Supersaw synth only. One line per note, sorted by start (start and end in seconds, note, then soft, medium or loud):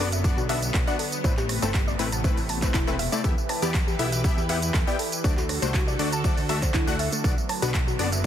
0.24 0.39 B3 medium
0.24 0.39 D4 medium
0.24 0.39 F#4 medium
0.24 0.39 D5 loud
0.49 0.59 B3 medium
0.49 0.59 D4 medium
0.49 0.59 F#4 medium
0.49 0.59 E5 loud
0.87 0.96 B3 loud
0.87 0.96 D4 medium
0.87 0.96 F#4 medium
0.87 0.96 F#5 loud
1.24 1.34 A3 medium
1.24 1.34 C4 medium
1.24 1.34 E4 medium
1.24 1.34 B4 loud
1.62 1.71 A3 loud
1.62 1.71 C4 medium
1.62 1.71 E4 medium
1.62 1.71 A4 loud
1.99 2.09 A3 medium
1.99 2.09 C4 medium
1.99 2.09 E4 medium
1.99 2.09 B4 loud
2.24 2.39 A3 medium
2.24 2.39 C4 medium
2.24 2.39 E4 medium
2.24 2.39 B4 loud
2.62 2.71 A3 medium
2.62 2.71 C4 medium
2.62 2.71 E4 medium
2.62 2.71 B4 medium
2.87 2.96 A3 medium
2.87 2.96 C4 medium
2.87 2.96 E4 medium
2.87 2.96 B4 medium
3.12 3.21 A3 medium
3.12 3.21 C4 medium
3.12 3.21 E4 medium
3.12 3.21 D5 loud
3.24 3.34 B3 medium
3.24 3.34 E4 medium
3.24 3.34 G4 medium
3.24 3.34 E5 medium
3.62 3.71 B3 medium
3.62 3.71 E4 medium
3.62 3.71 G4 medium
3.62 3.71 D5 loud
3.99 4.09 B3 medium
3.99 4.09 E4 medium
3.99 4.09 G4 medium
3.99 4.09 E5 loud
4.24 4.39 B3 medium
4.24 4.39 E4 medium
4.24 4.39 G4 medium
4.24 4.39 E5 loud
4.49 4.59 B3 medium
4.49 4.59 E4 medium
4.49 4.59 G4 medium
4.49 4.59 F#5 loud
4.87 4.96 B3 loud
4.87 4.96 E4 medium
4.87 4.96 G4 medium
4.87 4.96 G5 loud
5.24 5.34 A3 medium
5.24 5.34 D4 medium
5.24 5.34 F#4 medium
5.24 5.34 D5 medium
5.62 5.71 A3 loud
5.62 5.71 D4 medium
5.62 5.71 F#4 medium
5.62 5.71 C5 loud
5.99 6.09 A3 medium
5.99 6.09 D4 medium
5.99 6.09 F#4 medium
5.99 6.09 D5 loud
6.24 6.39 A3 medium
6.24 6.39 D4 medium
6.24 6.39 F#4 medium
6.24 6.39 D5 loud
6.49 6.59 A3 medium
6.49 6.59 D4 medium
6.49 6.59 F#4 medium
6.49 6.59 E5 loud
6.87 6.96 A3 loud
6.87 6.96 D4 medium
6.87 6.96 F#4 medium
6.87 6.96 F#5 loud
7.24 7.34 B3 medium
7.24 7.34 D4 medium
7.24 7.34 F#4 medium
7.24 7.34 D5 medium
7.62 7.71 B3 medium
7.62 7.71 D4 medium
7.62 7.71 F#4 medium
7.62 7.71 B4 loud
7.99 8.09 B3 medium
7.99 8.09 D4 medium
7.99 8.09 F#4 medium
7.99 8.09 D5 loud